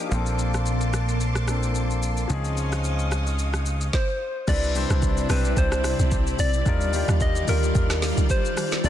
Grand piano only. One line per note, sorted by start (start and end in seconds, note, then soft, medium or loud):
0.00 0.09 F3 medium
0.00 0.11 A#3 medium
0.00 0.12 D4 medium
0.00 0.12 D#4 medium
0.00 0.13 G4 medium
0.09 1.44 F3 medium
0.09 1.45 A#3 medium
0.09 1.45 C4 medium
0.13 1.46 D4 medium
0.13 1.47 A4 medium
1.47 2.26 F3 medium
1.47 2.30 A#3 medium
1.47 2.27 C4 medium
1.47 2.30 D4 medium
1.47 2.31 A4 medium
2.28 3.89 F3 medium
2.28 3.90 C4 medium
2.28 3.90 C#4 medium
2.32 3.91 D#4 medium
2.32 3.92 G#4 medium
4.47 4.70 G3 medium
4.47 4.70 C4 medium
4.47 4.71 D4 medium
4.47 4.71 E4 medium
4.47 4.71 B4 medium
4.75 5.20 G3 medium
4.75 5.20 C4 medium
4.75 5.20 D4 medium
4.75 5.21 E4 medium
4.75 5.21 C5 medium
5.29 6.17 G3 medium
5.29 6.18 C4 medium
5.29 6.18 D4 medium
5.29 6.18 E4 medium
5.29 6.19 C5 medium
6.65 6.88 G3 medium
6.65 6.88 D4 medium
6.65 6.89 D#4 medium
6.65 6.89 F4 medium
6.65 6.89 A#4 medium
6.93 7.38 G3 medium
6.93 7.38 D4 medium
6.93 7.39 D#4 medium
6.93 7.39 F4 medium
6.93 7.39 G4 medium
7.48 8.36 G3 medium
7.48 8.36 D4 medium
7.48 8.36 D#4 medium
7.48 8.37 F4 medium
7.48 8.37 G4 medium
8.84 8.89 A3 medium
8.84 8.89 C4 medium
8.84 8.89 D4 medium
8.84 8.89 F4 medium